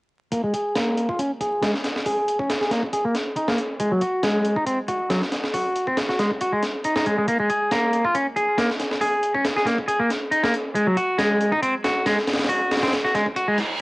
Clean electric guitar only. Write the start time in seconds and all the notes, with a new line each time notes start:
0.32 A#3
0.44 G#3
0.54 G#4
0.75 A#3
1.09 F4
1.19 C#4
1.41 G#4
1.62 G#3
2.06 G#4
2.39 C#4
2.61 G#4
2.71 A#3
2.93 G#4
3.05 A#3
3.37 D#4
3.48 A#3
3.80 G#3
3.92 F#3
4.02 F#4
4.24 G#3
4.57 D#4
4.67 C4
4.88 F#4
5.10 F#3
5.54 F#4
5.87 C4
6.09 F#4
6.19 G#3
6.41 F#4
6.52 G#3
6.84 D#4
6.96 D#4
7.06 G#3
7.18 G#3
7.28 A#3
7.39 G#3
7.49 G#4
7.71 A#3
8.05 F4
8.14 C#4
8.36 G#4
8.57 A#3
9.01 G#4
9.34 C#4
9.57 G#4
9.66 A#3
9.88 G#4
10.00 A#3
10.31 D#4
10.43 A#3
10.75 G#3
10.87 F#3
10.97 F#4
11.19 G#3
11.52 D#4
11.62 C4
11.84 F#4
12.06 G#3
12.49 F#4
12.83 C4
13.04 F#4
13.15 G#3
13.36 F#4
13.48 G#3